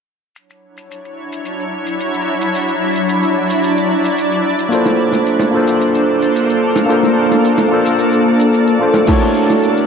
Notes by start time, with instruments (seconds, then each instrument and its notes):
0.36 ambient pad F#3 D4 E4 C#5, shaker
0.50 shaker
0.77 shaker
0.91 shaker
1.05 shaker
1.32 shaker
1.45 shaker
1.59 shaker
1.87 shaker
2.00 shaker
2.14 shaker
2.41 shaker
2.53 ambient pad D5, shaker
2.69 shaker
2.96 shaker
3.09 shaker
3.23 shaker
3.50 shaker
3.64 shaker
3.78 shaker
4.05 shaker
4.18 shaker
4.32 shaker
4.59 shaker
4.69 tine electric piano A#3 D4 F4, ambient pad A#3 A4 C5, shaker
4.73 tine electric piano A4 C5
4.86 high bongo, shaker
5.13 high bongo, shaker
5.27 shaker
5.39 high bongo, shaker
5.51 tine electric piano A#3 D4 F4
5.55 tine electric piano A4 C5
5.68 shaker
5.81 shaker
5.95 shaker
6.22 shaker
6.36 shaker
6.50 shaker
6.76 high bongo, shaker
6.86 tine electric piano A#3 D4 F4, ambient pad D5
6.90 tine electric piano A4 C5, shaker
7.03 high bongo, shaker
7.32 high bongo, shaker
7.45 shaker
7.58 high bongo, shaker
7.68 tine electric piano A#3 D4 F4
7.73 tine electric piano A4 C5
7.85 shaker
7.99 shaker
8.13 shaker
8.40 shaker
8.54 shaker
8.67 shaker
8.80 tine electric piano A#3 D4 F4 A4 C5
8.94 high bongo, shaker
9.06 ambient pad F#3 E4, tine electric piano A3 D4 E4, kick, crash, high bongo, shaker
9.10 tine electric piano F#4 C#5
9.22 shaker
9.50 high bongo, shaker
9.63 shaker
9.77 shaker